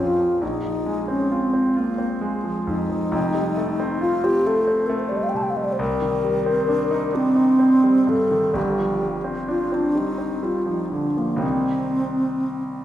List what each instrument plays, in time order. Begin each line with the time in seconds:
Already playing: grand piano A#1 F2 F3 C4 C#4 F4, alto flute F4
0.19 grand piano F3
0.41 grand piano A#1, alto flute D#4
0.63 grand piano F3
0.86 grand piano G#3
1.08 grand piano C4, alto flute C#4
1.31 alto flute C4, grand piano F4
1.53 grand piano C4
1.76 alto flute A#3, grand piano F4
1.98 grand piano C4
2.21 grand piano G#3
2.44 grand piano F3
2.67 grand piano F2, alto flute D#4
2.89 grand piano F3
3.11 grand piano F1 F2
3.34 grand piano G3
3.57 grand piano A3
3.80 grand piano C4
4.01 grand piano F4, alto flute F4
4.24 grand piano C4, alto flute G4
4.46 grand piano A3, alto flute A4
4.67 grand piano C4
4.87 grand piano A3, alto flute A#4
4.99 alto flute C5
5.09 grand piano G3, alto flute D5
5.17 alto flute D#5
5.23 alto flute F5
5.29 alto flute G5
5.34 grand piano C3, alto flute A5
5.43 alto flute G5
5.50 alto flute F5
5.56 grand piano G3, alto flute D#5
5.64 alto flute D5
5.72 alto flute C5
5.79 grand piano C2, alto flute A#4
6.02 grand piano D#3
6.24 grand piano G3
6.46 grand piano C4
6.68 grand piano D4
6.91 grand piano D#4
7.12 alto flute C4, grand piano D4
7.35 grand piano D#4
7.59 grand piano C4
7.84 grand piano G3
8.07 grand piano G2, alto flute A4
8.31 grand piano D#3
8.53 grand piano G1 G2, alto flute G4
8.79 grand piano F3
9.01 grand piano G3
9.24 grand piano C4
9.48 grand piano D4, alto flute F4
9.72 grand piano C4, alto flute D4
9.95 grand piano G3, alto flute D#4
10.18 grand piano C4
10.43 grand piano G3, alto flute F4
10.66 grand piano F3, alto flute D#4
10.91 grand piano D3, alto flute D4
11.17 grand piano F3, alto flute A#3
11.36 grand piano C2 D#3 A#3 C4 D#4
11.43 alto flute C4